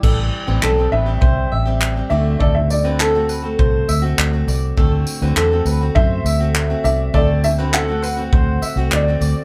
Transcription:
<<
  \new Staff \with { instrumentName = "Upright piano" } { \time 4/4 \key d \mixolydian \tempo 4 = 101 r4 a'8 e''2 e''8 | d''16 e''16 d''8 a'4. r4. | r4 a'4 e''4. e''8 | d''8 e''8 fis''2 d''4 | }
  \new Staff \with { instrumentName = "Mandolin" } { \time 4/4 \key d \mixolydian a'16 r8 b'16 a'8 b'16 r16 c''8 e''16 r8. d''16 r16 | a'16 r8 b'16 a'8 b'16 r16 c''8 e''16 r8. d''16 r16 | a'16 r8 b'16 a'8 b'16 r16 c''8 e''16 r8. d''16 r16 | a'16 r8 b'16 a'8 b'16 r16 c''8 e''16 r8. d''16 r16 | }
  \new Staff \with { instrumentName = "Steel-string acoustic guitar" } { \time 4/4 \key d \mixolydian <e g c' g'>8. <a, e g c' g'>8 <g c' g'>8 <g c' g'>4 <g c' g'>8 <g c' g'>16 <d a c' fis'>8~ | <d a c' fis'>8. <d a c' fis'>8 <a c' fis'>8 <a c' fis'>4 <a c' fis'>8 <a c' fis'>8. | <d a c' fis'>8. <d a c' fis'>8 <a c' fis'>8 <a c' fis'>4 <a c' fis'>8 <a c' fis'>8. | <d a c' fis'>8. <d a c' fis'>8 <a c' fis'>8 <a c' fis'>4 <a c' fis'>8 <a c' fis'>8. | }
  \new Staff \with { instrumentName = "Fingered electric bass" } { \clef bass \time 4/4 \key d \mixolydian a,,8 r16 a,,16 b,,8 a,,8 c,8 a,,4 d,8 | d,2 c,8 d,8 d,8 c,8 | d,8 r16 d,16 e,8 d,8 fis,8 d,4 c,8 | d,2 d,8 r16 c,16 d,8 d,16 r16 | }
  \new DrumStaff \with { instrumentName = "Drums" } \drummode { \time 4/4 <cymc bd>4 hc4 bd4 hc4 | bd8 tamb8 hc8 tamb8 bd8 tamb8 hc8 tamb8 | bd8 tamb8 hc8 tamb8 bd8 tamb8 hc8 tamb8 | bd8 tamb8 hc8 tamb8 bd8 tamb8 hc8 tamb8 | }
>>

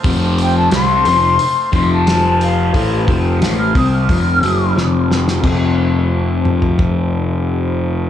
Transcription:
<<
  \new Staff \with { instrumentName = "Flute" } { \time 4/4 \tempo 4 = 89 r8 g''16 a''16 c'''4. c'''16 a''8. f''8 | r4 r16 f'''16 ees'''16 f'''16 f'''4 r4 | r1 | }
  \new Staff \with { instrumentName = "Transistor combo organ" } { \time 4/4 <a c' ees' c'' f''>1~ | <a c' ees' c'' f''>1 | <a c' ees' f' c''>1 | }
  \new Staff \with { instrumentName = "Distorted electric guitar" } { \clef bass \time 4/4 <f, c f>4 <c g c'>8 <f, c>8 r8 <f, c f>4. | <a, e a>8 <f, c f>8 <a, e a>8 <c g c'>8 <f, c f>8 <ges, des ges>8 <f, c f>4 | <f, c f>1 | }
  \new Staff \with { instrumentName = "Picked electric bass" } { \clef bass \time 4/4 f,,4 c,8 f,,8 r8 f,,4. | a,,8 f,,8 a,,8 c,8 f,,8 ges,,8 f,,4 | f,,1 | }
  \new DrumStaff \with { instrumentName = "Drums" } \drummode { \time 4/4 <hho bd>8 hho8 <hho sn>8 hho8 hho8 <hho bd>8 <hho sn>8 hho8 | <hho bd>8 <hho bd>8 <hho sn>8 <hho bd>8 <hho bd>8 hho8 sn8 sn16 sn16 | <cymc bd>4 r8 toml16 tomfh16 bd4 r4 | }
>>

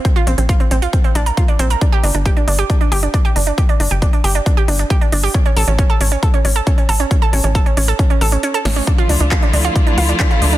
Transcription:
<<
  \new Staff \with { instrumentName = "Synth arpeggio sound" } { \time 4/4 \key g \dorian \tempo 4 = 136 c'16 f'16 c'16 c'16 f'16 c'16 c'16 f'16 c'16 c'16 d'16 bes'16 f'16 d'16 c'16 bes'16 | d'16 g'16 d'16 d'16 g'16 d'16 d'16 g'16 d'16 d'16 g'16 d'16 d'16 g'16 d'16 d'16 | g'16 d'16 d'16 g'16 d'16 d'16 g'16 d'16 d'16 g'16 d'16 d'16 g'16 d'16 d'16 g'16 | cis'16 cis'16 a'16 cis'16 cis'16 a'16 cis'16 cis'16 a'16 cis'16 cis'16 a'16 cis'16 cis'16 a'16 cis'16 |
cis'16 a'16 cis'16 cis'16 a'16 cis'16 cis'16 a'16 cis'16 cis'16 a'16 cis'16 cis'16 a'16 cis'16 cis'16 | d'16 f'16 d'16 d'16 f'16 d'16 d'16 f'16 d'16 d'16 f'16 d'16 d'16 f'16 d'16 d'16 | }
  \new Staff \with { instrumentName = "String section" } { \time 4/4 \key g \dorian r1 | r1 | r1 | r1 |
r1 | <d f a e' f'>1 | }
  \new Staff \with { instrumentName = "Analog synth bass" } { \clef bass \time 4/4 \key g \dorian r8 bes,,16 bes,,16 r8 bes,,16 r8. bes,,16 r8. bes,,16 r16 | r8 g,,16 g,,16 r8 g,,16 r8. g,,16 r8. g,,16 r16 | r8 g,,16 g,,16 r8 g,,16 r8. g,,16 r8. g,,16 r16 | r8 a,,16 a,,16 r8 a,,16 r8. a,,16 r8. a,,16 r16 |
r8 a,,16 a,,16 r8 a,,16 r8. a,,16 r8. a,,16 r16 | r8 d,16 d,16 r8 d,16 r8. d,16 r8. d,16 r16 | }
  \new DrumStaff \with { instrumentName = "Drums" } \drummode { \time 4/4 <hh bd>16 hh16 hh16 hh16 <hh bd>16 hh16 hh16 hh16 <hh bd>16 hh16 hh16 hh16 <hh bd>16 hh16 hh16 hh16 | <hh bd>16 hh16 hho16 hh16 <hh bd>16 hh16 hho16 hh16 <hh bd>16 hh16 hho16 hh16 <hh bd>16 hh16 hho16 hh16 | <hh bd>16 hh16 hho16 hh16 <hh bd>16 hh16 hho16 hh16 <hh bd>16 hh16 hho16 hh16 <hh bd>16 hh16 hho16 hho16 | <hh bd>16 hh16 hho16 hh16 <hh bd>16 hh16 hho16 hh16 <hh bd>16 hh16 hho16 hh16 <hh bd>16 hh16 hho16 hh16 |
<hh bd>16 hh16 hho16 hh16 <hh bd>16 hh16 hho16 hh16 <hh bd>16 hh16 hho16 hh16 hh16 hh16 <hho sn>16 hho16 | <hh bd>16 hh16 hho16 hh16 <hc hh bd>16 hh16 hho16 hh16 <hh bd>16 hh16 hho16 hh16 <hc hh bd>16 hh16 hho16 hh16 | }
>>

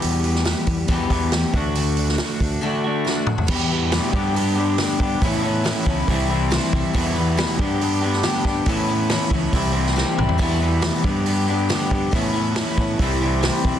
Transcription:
<<
  \new Staff \with { instrumentName = "Harmonium" } { \time 4/4 \key g \major \tempo 4 = 139 r1 | r1 | <b e' g' b'>4. <b d' g' b'>2~ <b d' g' b'>8 | <cis' e' a' b'>2 <c' e' g' c''>2 |
<b e' g' b'>4. <b d' g' b'>2~ <b d' g' b'>8 | <cis' e' a' b'>2 <c' e' g' c''>2 | <b e' g' b'>4. <b d' g' b'>2~ <b d' g' b'>8 | <cis' e' a' b'>2 <c' e' g' c''>2 | }
  \new Staff \with { instrumentName = "Clean electric guitar" } { \time 4/4 \key g \major <e, b, e g b g'>2 <e, b, e g b g'>8 <e, b, e g b g'>4 <d a d' fis'>8~ | <d a d' fis'>2 <d a d' fis'>8 <d a d' fis'>4 r8 | <e, b, e g b g'>8 <e g b g'>8 <e, b, e g b g'>8 <g, d g b d' g'>8 <g b d' g'>8 <g, d g b d' g'>8 <g b d' g'>8 <g b d' g'>8 | <a, e b cis' e'>8 <b cis' e'>8 <a, e b cis' e'>8 <b cis' e'>8 <c e g c' e'>8 <c e g c' e'>8 <e g c' e'>8 <g c' e'>8 |
<e, b, e g b e'>8 <e g b e'>8 <e, b, e g b e'>8 <g, d g b d' g'>8 <g b d' g'>8 <g, d g b d' g'>8 <g b d' g'>8 <g b d' g'>8 | <a, e b cis' e'>8 <b cis' e'>8 <a, e b cis' e'>8 <b cis' e'>8 <c e g c' e'>8 <c e g c' e'>8 <e g c' e'>8 <g c' e'>8 | <e, b, e g b e'>8 <e g b e'>8 <e, b, e g b e'>8 <g, d g b d' g'>8 <g b d' g'>8 <g, d g b d' g'>8 <g b d' g'>8 <g b d' g'>8 | <a, e b cis' e'>8 <b cis' e'>8 <a, e b cis' e'>8 <b cis' e'>8 <c e g c' e'>8 <c e g c' e'>8 <e g c' e'>8 <g c' e'>8 | }
  \new Staff \with { instrumentName = "Twelve-string acoustic guitar" } { \time 4/4 \key g \major <e, b, e g b g'>8 <e g b g'>8 <e g b g'>8 <e g b g'>8 <e, b, e g b g'>4 <e g b g'>8 <a d' fis'>8 | <d a d' fis'>8 <a d' fis'>8 <d a d' fis'>8 <a d' fis'>8 <d a d' fis'>4 <d a d' fis'>4 | <e, b, e g b g'>8 <e g b g'>8 <e, b, e g b g'>8 <g b d' g'>8 <g b d' g'>8 <g b d' g'>8 <g, d g b d' g'>4 | <a, e b cis' e'>8 <b cis' e'>8 <a, e b cis' e'>8 <b cis' e'>8 <e g c' e'>8 <g c' e'>8 <c e g c' e'>4 |
<e, b, e g b e'>8 <e g b e'>8 <e, b, e g b e'>8 <g b d' g'>8 <g b d' g'>8 <g b d' g'>8 <g, d g b d' g'>4 | <a, e b cis' e'>8 <b cis' e'>8 <a, e b cis' e'>8 <b cis' e'>8 <e g c' e'>8 <g c' e'>8 <c e g c' e'>4 | <e, b, e g b e'>8 <e g b e'>8 <e, b, e g b e'>8 <g b d' g'>8 <g b d' g'>8 <g b d' g'>8 <g, d g b d' g'>4 | <a, e b cis' e'>8 <b cis' e'>8 <a, e b cis' e'>8 <b cis' e'>8 <e g c' e'>8 <g c' e'>8 <c e g c' e'>4 | }
  \new Staff \with { instrumentName = "Fingered electric bass" } { \clef bass \time 4/4 \key g \major e,4. e,8 e,8 e,4 d,8~ | d,4. d,8 r2 | e,4. g,2 g,8 | a,4. cis,8 c,4. c,16 r16 |
e,4. g,2 g,8 | a,4. cis,8 c,4. c,16 r16 | e,4. g,2 g,8 | a,4. a,8 c,4. b,,16 r16 | }
  \new DrumStaff \with { instrumentName = "Drums" } \drummode { \time 4/4 hho8 hho16 sn16 <hho sn>8 <hho bd>8 <hho bd>8 <hho bd>8 <hho sn>8 <hho bd>8 | hho8 hho16 sn16 <hho sn>8 <hho bd>8 r4 sn8 toml16 tomfh16 | <cymc bd>4 <hho sn>8 bd8 hho4 <hho sn>8 bd8 | <hho bd>4 <hho sn>8 bd8 <hho bd>4 <hho sn>8 bd8 |
<hho bd>4 <hho sn>8 bd8 hho8. sn16 <hho sn>8 <bd sn>8 | <hho bd>4 <hho sn>8 bd8 <hho bd>8. sn16 sn8 toml16 tomfh16 | <hho bd>4 <hho sn>8 bd8 hho4 <hho sn>8 bd8 | <hho bd>4 <hho sn>8 bd8 <hho bd>4 <hho sn>8 bd8 | }
>>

